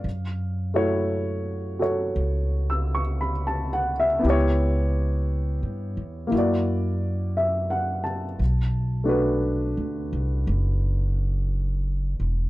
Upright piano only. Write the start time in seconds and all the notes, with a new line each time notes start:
Already playing: F5
0.74 A3 E4 F#4 C#5
1.79 F#4 A4 C#5
2.70 E6
2.95 C#6
3.21 B5
3.47 A5
3.73 F#5
4.00 E5
4.19 B3 E4
4.26 G4 C#5
6.27 A#3 E4
6.35 F#4 D5
7.37 E5
7.70 F#5
8.04 A5
9.04 A3 D4 F#4
9.09 B4